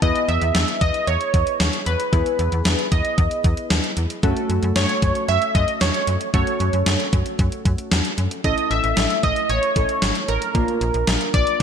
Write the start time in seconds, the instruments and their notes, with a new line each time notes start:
0.02 fm bass E2, synth keys B3 E4 G#4 B4, analog polysynth D#5, kick, closed hi-hat
0.15 closed hi-hat
0.29 fm bass E2, analog polysynth E5, closed hi-hat
0.42 fm bass E2, closed hi-hat
0.55 fm bass E2, snare, closed hi-hat
0.68 closed hi-hat
0.81 fm bass E2, analog polysynth D#5, kick, closed hi-hat
0.94 closed hi-hat
1.07 fm bass E2, analog polysynth C#5, closed hi-hat
1.21 closed hi-hat
1.34 fm bass E2, kick, closed hi-hat
1.47 closed hi-hat
1.60 fm bass D#2, snare, closed hi-hat
1.73 closed hi-hat
1.86 fm bass E2, analog polysynth B4, closed hi-hat
2.00 closed hi-hat
2.13 fm bass E2, synth keys B3 E4 G#4 B4, kick, closed hi-hat
2.26 closed hi-hat
2.39 fm bass E2, closed hi-hat
2.52 fm bass E2, closed hi-hat
2.65 fm bass E2, snare, closed hi-hat
2.79 closed hi-hat
2.92 fm bass E2, analog polysynth D#5, kick, closed hi-hat
3.05 closed hi-hat
3.18 fm bass E2, kick, closed hi-hat
3.31 closed hi-hat
3.44 fm bass E2, kick, closed hi-hat
3.57 closed hi-hat
3.70 fm bass D#2, snare, closed hi-hat
3.84 closed hi-hat
3.97 fm bass E2, closed hi-hat
4.10 closed hi-hat
4.23 fm bass F#2, synth keys A3 C#4 F#4 A4, kick, closed hi-hat
4.37 closed hi-hat
4.50 fm bass F#2, closed hi-hat
4.63 fm bass F#2, closed hi-hat
4.76 fm bass F#2, analog polysynth C#5, snare, closed hi-hat
4.89 closed hi-hat
5.02 fm bass F#2, kick, closed hi-hat
5.15 closed hi-hat
5.28 fm bass F#2, analog polysynth E5, closed hi-hat
5.42 closed hi-hat
5.55 fm bass F#2, analog polysynth D#5, kick, closed hi-hat
5.68 closed hi-hat
5.81 fm bass E2, analog polysynth C#5, snare, closed hi-hat
5.94 closed hi-hat
6.07 fm bass F#2, closed hi-hat
6.21 closed hi-hat
6.34 fm bass F#2, synth keys A3 C#4 F#4 A4, analog polysynth C#5, kick, closed hi-hat
6.47 closed hi-hat
6.60 fm bass F#2, closed hi-hat
6.73 fm bass F#2, closed hi-hat
6.86 fm bass F#2, snare, closed hi-hat
7.00 closed hi-hat
7.13 fm bass F#2, kick, closed hi-hat
7.26 closed hi-hat
7.39 fm bass F#2, kick, closed hi-hat
7.52 closed hi-hat
7.65 fm bass F#2, kick, closed hi-hat
7.78 closed hi-hat
7.92 fm bass E2, snare, closed hi-hat
8.05 closed hi-hat
8.18 fm bass F#2, closed hi-hat
8.31 closed hi-hat
8.44 fm bass A1, synth keys A3 C#4 E4 A4, analog polysynth D#5, kick, closed hi-hat
8.58 closed hi-hat
8.71 fm bass A1, analog polysynth E5, closed hi-hat
8.84 fm bass A1, closed hi-hat
8.97 fm bass A1, snare, closed hi-hat
9.10 closed hi-hat
9.23 fm bass A1, analog polysynth D#5, kick, closed hi-hat
9.36 closed hi-hat
9.50 fm bass A1, analog polysynth C#5, closed hi-hat
9.63 closed hi-hat
9.76 fm bass A1, synth keys A3 C#4 E4 A4, kick, closed hi-hat
9.89 closed hi-hat
10.02 fm bass G#1, snare, closed hi-hat
10.15 closed hi-hat
10.28 fm bass A1, analog polysynth A#4, closed hi-hat
10.42 closed hi-hat
10.55 fm bass A#1, synth keys A#3 D4 F4 A#4, kick, closed hi-hat
10.68 closed hi-hat
10.81 fm bass A#1, closed hi-hat
10.94 fm bass A#1, closed hi-hat
11.07 fm bass A#1, snare, closed hi-hat
11.21 closed hi-hat
11.34 fm bass A#1, analog polysynth D5, kick, closed hi-hat
11.47 closed hi-hat